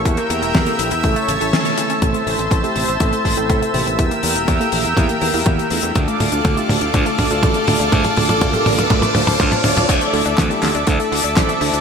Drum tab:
CC |----------------|----------------|----------------|----------------|
HH |xxxxxxxxxxxxxxxx|xxoxxxoxxxoxxxox|xxoxxxoxxxooxxox|xxoxxxoxxxoxxxox|
CP |----------------|----------------|----------------|----------------|
SD |----o-------o---|----------------|----------------|----------------|
T2 |----------------|o---o---o---o---|o---o---o---o---|o-o-o-o-o-o-o-o-|
BD |o---o---o-------|o---o---o-o-o---|o---o---o---o---|o---o---o-o-o---|

CC |----------------|x---------------|
HH |xxoxxxoxxxooxxox|xxoxxxoxxxoxxxox|
CP |----------------|----x-x-----x---|
SD |----------------|----o-o-----o---|
T2 |oooooooooooooooo|----------------|
BD |o---o---o---o---|o---o---o---o---|